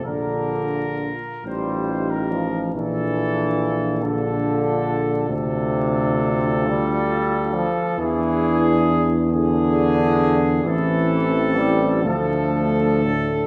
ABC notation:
X:1
M:6/8
L:1/16
Q:3/8=45
K:Bblyd
V:1 name="Trumpet section"
B6 c3 B3 | A6 A6 | [K:Ddor] A12 | ^G6 G6 |
A6 A6 |]
V:2 name="French horn section"
F6 F6 | F6 F6 | [K:Ddor] F12 | E6 E6 |
E6 D6 |]
V:3 name="Euphonium"
D4 z2 _E6 | D6 D6 | [K:Ddor] D8- D2 z2 | D6 D6 |
C6 A,6 |]
V:4 name="Trombone" clef=bass
D,4 z2 G,4 F,2 | E,6 D,6 | [K:Ddor] C,6 G,4 F,2 | E,4 z2 D,6 |
E,4 G,2 F,4 A,,2 |]
V:5 name="Tuba" clef=bass
B,,,4 z2 A,,,6 | B,,,12 | [K:Ddor] D,,8- D,,2 z2 | E,,12 |
A,,,6 D,,6 |]